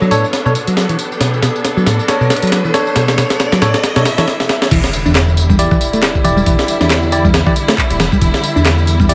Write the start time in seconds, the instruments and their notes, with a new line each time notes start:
Already playing: string section B3 D4 A4 C#5, riser
0.01 picked electric bass F#3, tambourine
0.11 picked electric bass A2, tine electric piano D4 A4 C#5, closed hi-hat, tambourine
0.24 tambourine
0.33 snare, closed hi-hat, tambourine
0.45 picked electric bass B2, tine electric piano D4 A4 C#5, tambourine
0.55 closed hi-hat, tambourine
0.67 picked electric bass F#3, closed hi-hat, tambourine
0.77 snare, tambourine
0.89 picked electric bass E3, closed hi-hat, tambourine
0.99 closed hi-hat, tambourine
1.12 tambourine
1.20 picked electric bass B2, snare, closed hi-hat, tambourine
1.34 tambourine
1.42 picked electric bass B2, snare, closed hi-hat, tambourine
1.56 tambourine
1.65 snare, closed hi-hat, tambourine
1.77 picked electric bass F#3, tambourine
1.86 picked electric bass A2, snare, closed hi-hat, tambourine
1.99 tambourine
2.08 tine electric piano D4 A4 C#5, snare, closed hi-hat, tambourine
2.21 picked electric bass B2, tambourine
2.30 snare, closed hi-hat, tambourine
2.36 closed hi-hat
2.42 picked electric bass F#3, closed hi-hat, tambourine
2.47 closed hi-hat
2.52 snare, closed hi-hat, tambourine
2.65 picked electric bass E3, tambourine
2.74 tine electric piano D4 A4 C#5, snare, closed hi-hat, tambourine
2.87 tambourine
2.96 picked electric bass B2, snare, closed hi-hat, tambourine
3.08 snare, tambourine
3.18 picked electric bass B2, snare, closed hi-hat, tambourine
3.30 snare, closed hi-hat, tambourine
3.40 snare, closed hi-hat, tambourine
3.52 picked electric bass F#3, snare, tambourine
3.62 picked electric bass A2, tine electric piano D4 A4 C#5, snare, closed hi-hat, tambourine
3.74 snare, tambourine
3.83 snare, closed hi-hat, tambourine, swell
3.96 picked electric bass B2, tine electric piano D4 A4 C#5, snare, tambourine
4.05 snare, closed hi-hat, tambourine
4.18 picked electric bass E3, tine electric piano D4 A4 C#5, snare, closed hi-hat, tambourine
4.28 snare
4.40 snare
4.49 snare
4.62 snare
4.71 detuned saw bass E1, string section D3 G3 E4, picked electric bass E3, kick, closed hi-hat, crash, tambourine, impact
4.84 snare, tambourine
4.93 closed hi-hat, tambourine
5.06 detuned saw bass E2, picked electric bass D4, tambourine
5.15 snare, clap, closed hi-hat, tambourine
5.28 tambourine
5.37 closed hi-hat, tambourine
5.49 picked electric bass G3, kick, tambourine
5.59 tine electric piano E4 G4 D5, closed hi-hat, tambourine
5.71 picked electric bass E3, kick, tambourine
5.81 closed hi-hat, tambourine
5.93 picked electric bass A3, closed hi-hat, tambourine
6.02 snare, clap, closed hi-hat, tambourine
6.15 kick, tambourine
6.24 detuned saw bass E1, picked electric bass E3, tine electric piano E4 G4 D5, closed hi-hat, tambourine
6.37 picked electric bass G3, tambourine
6.46 detuned saw bass E1, picked electric bass E3, kick, closed hi-hat, tambourine
6.59 snare, tambourine
6.68 closed hi-hat, tambourine
6.81 detuned saw bass E2, picked electric bass D4, snare, tambourine
6.90 snare, clap, closed hi-hat, tambourine
7.03 tambourine
7.12 tine electric piano E4 G4 D5, closed hi-hat, tambourine
7.24 picked electric bass G3, kick, tambourine
7.34 snare, closed hi-hat, tambourine
7.46 picked electric bass E3, tine electric piano E4 G4 D5, kick, tambourine
7.56 closed hi-hat, tambourine
7.68 picked electric bass A3, snare, closed hi-hat, tambourine
7.78 kick, clap, tambourine
7.90 detuned saw bass D1, closed hi-hat, tambourine
8.00 detuned saw bass E1, picked electric bass E3, snare, closed hi-hat, tambourine
8.12 picked electric bass G3, kick, tambourine
8.22 detuned saw bass E1, picked electric bass E3, kick, closed hi-hat, tambourine
8.34 snare, tambourine
8.44 closed hi-hat, tambourine
8.56 detuned saw bass E2, picked electric bass D4, tambourine
8.65 snare, clap, closed hi-hat, tambourine
8.78 tambourine
8.87 closed hi-hat, tambourine
9.00 picked electric bass G3, kick, tambourine
9.09 tine electric piano E4 G4 D5, closed hi-hat, tambourine